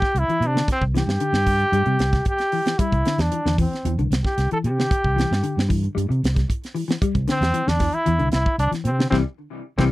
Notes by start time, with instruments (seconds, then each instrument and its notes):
Already playing: trombone G4
0.02 kick, snare
0.15 fingered electric bass C2, closed hi-hat
0.19 trombone E4
0.28 clean electric guitar E3, muted fingered electric bass stroke, closed hi-hat
0.40 fingered electric bass C3, closed hi-hat
0.47 trombone D4
0.55 clean electric guitar D3, snare
0.68 muted fingered electric bass stroke, kick, snare, closed hi-hat
0.72 trombone C4
0.81 fingered electric bass C2, kick
0.94 clean electric guitar E3, trombone G4, snare, closed hi-hat
1.07 fingered electric bass G2, snare
1.20 clean electric guitar D3, closed hi-hat
1.33 fingered electric bass G2, snare
1.46 kick, open hi-hat
1.60 closed hi-hat
1.72 fingered electric bass G2, clean electric guitar G3, closed hi-hat
1.86 fingered electric bass C3, clean electric guitar G3, closed hi-hat
1.99 fingered electric bass C2, snare, closed hi-hat
2.13 kick, snare, closed hi-hat
2.25 trombone G4, kick, closed hi-hat
2.39 snare, closed hi-hat
2.52 clean electric guitar E3, open hi-hat
2.66 clean electric guitar E3, snare, closed hi-hat
2.79 clean electric guitar G3, trombone E4, kick, closed hi-hat
2.92 fingered electric bass C2, kick, closed hi-hat
3.05 clean electric guitar D3, snare, closed hi-hat
3.18 fingered electric bass E2, trombone D4, snare, closed hi-hat
3.32 clean electric guitar E3, closed hi-hat
3.45 fingered electric bass E2, clean electric guitar D3, snare
3.58 clean electric guitar E3, trombone C4, kick, open hi-hat
3.73 snare, closed hi-hat
3.85 fingered electric bass E2, clean electric guitar E3, closed hi-hat
3.98 fingered electric bass C2, clean electric guitar D3, closed hi-hat
4.11 fingered electric bass C2, snare, closed hi-hat
4.25 trombone G4, kick, snare
4.38 fingered electric bass C2, snare, closed hi-hat
4.51 clean electric guitar E3, trombone A4, closed hi-hat
4.64 fingered electric bass C3, trombone G4, closed hi-hat
4.79 clean electric guitar D3, snare
4.91 muted fingered electric bass stroke, kick, closed hi-hat
5.04 fingered electric bass C2, kick
5.16 clean electric guitar E3, snare, closed hi-hat
5.31 fingered electric bass G2, snare
5.43 clean electric guitar D3, closed hi-hat
5.57 fingered electric bass G2, snare
5.69 clean electric guitar E3, kick, open hi-hat
5.84 closed hi-hat
5.95 fingered electric bass G2, clean electric guitar G3, closed hi-hat
6.09 fingered electric bass C3, muted clean electric guitar stroke, closed hi-hat
6.23 fingered electric bass C2, snare, closed hi-hat
6.36 kick, snare, closed hi-hat
6.50 kick, closed hi-hat
6.64 snare, closed hi-hat
6.75 clean electric guitar E3, open hi-hat
6.88 clean electric guitar E3, snare, closed hi-hat
7.02 clean electric guitar G3, kick, closed hi-hat
7.15 fingered electric bass C2, kick, closed hi-hat
7.28 clean electric guitar D3, trombone C4, snare, closed hi-hat
7.41 fingered electric bass E2, snare, closed hi-hat
7.54 clean electric guitar E3, closed hi-hat
7.67 fingered electric bass E2, clean electric guitar D3, trombone D4, snare
7.79 clean electric guitar E3, kick, snare, open hi-hat
7.93 trombone E4, closed hi-hat
8.06 fingered electric bass E2, clean electric guitar E3, closed hi-hat
8.19 fingered electric bass C2, clean electric guitar D3, closed hi-hat
8.32 fingered electric bass C2, trombone E4, snare, closed hi-hat
8.46 kick
8.58 fingered electric bass C2, trombone D4, closed hi-hat
8.71 clean electric guitar E3, muted fingered electric bass stroke, snare, closed hi-hat
8.85 fingered electric bass C3, trombone C4, closed hi-hat
8.99 clean electric guitar D3, snare
9.10 fingered electric bass C2, clean electric guitar C3 E3 G3, trombone C4, kick, snare
9.78 fingered electric bass C2, clean electric guitar C3 E3 G3, trombone C4, kick, snare